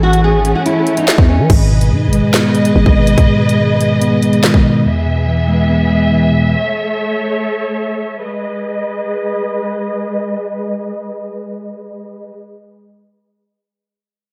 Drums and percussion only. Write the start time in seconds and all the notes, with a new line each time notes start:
0.13 closed hi-hat
0.45 closed hi-hat
0.66 closed hi-hat
0.87 closed hi-hat
0.97 closed hi-hat
1.08 snare, clap, closed hi-hat
1.18 kick
1.50 kick, closed hi-hat, crash
1.81 closed hi-hat
2.13 closed hi-hat
2.34 snare, clap, closed hi-hat
2.55 closed hi-hat
2.65 closed hi-hat
2.86 kick
3.07 closed hi-hat
3.18 kick, closed hi-hat
3.49 closed hi-hat
3.81 closed hi-hat
4.02 closed hi-hat
4.22 closed hi-hat
4.33 closed hi-hat
4.43 snare, clap, closed hi-hat
4.54 kick